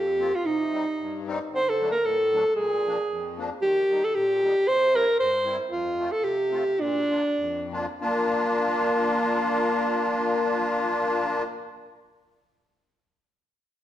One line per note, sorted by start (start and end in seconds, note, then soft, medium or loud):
0.00 0.32 F2 medium
0.00 0.37 G4 loud
0.19 0.32 A#3 medium
0.19 0.32 C4 medium
0.19 0.33 F4 medium
0.36 0.47 F4 medium
0.44 0.86 C3 medium
0.44 1.28 D#4 medium
0.72 0.85 G3 medium
0.72 0.85 C4 medium
0.72 0.85 D#4 medium
0.99 1.40 G2 medium
1.27 1.38 G3 medium
1.27 1.39 C4 medium
1.27 1.39 D#4 medium
1.51 1.92 D3 medium
1.51 1.71 C5 loud
1.69 1.91 A4 loud
1.81 1.92 F#3 medium
1.81 1.92 A3 medium
1.81 1.92 D4 medium
1.91 2.07 A#4 loud
2.04 2.44 A2 medium
2.04 2.55 A4 loud
2.32 2.44 F#3 medium
2.32 2.44 A3 medium
2.32 2.45 D4 medium
2.55 2.97 A#2 medium
2.55 3.35 G#4 medium
2.87 2.97 F3 medium
2.87 2.97 A#3 medium
2.87 2.98 D4 medium
3.09 3.50 F2 medium
3.38 3.49 F3 medium
3.38 3.49 A#3 medium
3.38 3.50 D4 medium
3.62 4.03 D#3 medium
3.62 4.06 G4 loud
3.91 4.03 G3 medium
3.91 4.02 A#3 medium
3.91 4.03 D#4 medium
4.04 4.17 A4 medium
4.15 4.55 A#2 medium
4.15 4.69 G4 loud
4.42 4.54 G3 medium
4.42 4.54 A#3 medium
4.42 4.55 D#4 medium
4.66 5.06 C3 medium
4.66 4.97 C5 loud
4.94 5.05 G3 medium
4.94 5.06 C4 medium
4.94 5.06 E4 medium
4.94 5.19 A#4 loud
5.20 5.59 G2 medium
5.20 5.57 C5 loud
5.45 5.57 G3 medium
5.45 5.57 C4 medium
5.45 5.57 E4 medium
5.70 6.10 F2 medium
5.70 6.13 F4 medium
5.99 6.10 A3 medium
5.99 6.11 C4 medium
5.99 6.11 F4 medium
6.12 6.25 A4 loud
6.22 6.64 C3 medium
6.22 6.82 G4 medium
6.51 6.64 A3 medium
6.51 6.64 C4 medium
6.51 6.64 F4 medium
6.78 7.23 A#2 medium
6.78 7.74 D4 loud
7.11 7.23 A#3 medium
7.11 7.23 D4 medium
7.11 7.23 F4 medium
7.38 7.87 F2 medium
7.72 7.86 A#3 medium
7.72 7.86 D4 medium
7.72 7.86 F4 medium
8.01 11.43 A#3 loud
8.01 11.44 A#3 medium
8.01 11.43 D4 medium
8.01 11.43 F4 loud